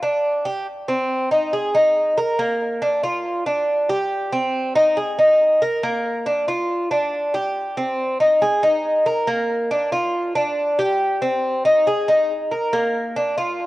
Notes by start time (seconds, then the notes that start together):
0.03 D4
0.45 G4
0.88 C4
1.31 D#4
1.53 G#4
1.75 D#4
2.17 A#4
2.39 A#3
2.82 D4
3.03 F4
3.46 D4
3.89 G4
4.33 C4
4.76 D#4
4.97 G#4
5.19 D#4
5.62 A#4
5.83 A#3
6.26 D4
6.48 F4
6.91 D4
7.34 G4
7.77 C4
8.20 D#4
8.42 G#4
8.63 D#4
9.06 A#4
9.27 A#3
9.71 D4
9.92 F4
10.35 D4
10.79 G4
11.22 C4
11.65 D#4
11.87 G#4
12.08 D#4
12.51 A#4
12.73 A#3
13.16 D4
13.37 F4